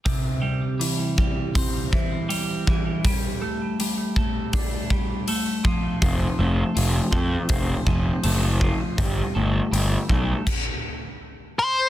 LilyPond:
<<
  \new Staff \with { instrumentName = "Lead electric guitar" } { \time 4/4 \key c \major \tempo 4 = 81 r1 | r1 | r1 | r2. r8 c''8 | }
  \new Staff \with { instrumentName = "Clean electric guitar" } { \clef bass \time 4/4 \key c \major c8 g8 e8 g8 c'8 e8 g8 e8 | g8 a8 g8 a8 d'8 g8 a8 f8 | f8 a8 f8 a8 c'8 f8 a8 f8 | g8 a8 g8 a8 r2 | }
  \new Staff \with { instrumentName = "Picked electric bass" } { \clef bass \time 4/4 \key c \major r1 | r1 | f,,8 f,,8 f,,8 f,8 f,,8 f,,8 fis,,4 | g,,8 g,,8 g,,8 b,,8 r2 | }
  \new DrumStaff \with { instrumentName = "Drums" } \drummode { \time 4/4 <hho bd>4 hho8 bd8 <hho bd>8 bd8 hho8 bd8 | <hho bd>4 hho8 bd8 <hho bd>8 bd8 hho8 bd8 | <hho bd>4 hho8 bd8 <hho bd>8 bd8 hho8 bd8 | <hho bd>4 hho8 bd8 <cymc bd>4 r4 | }
>>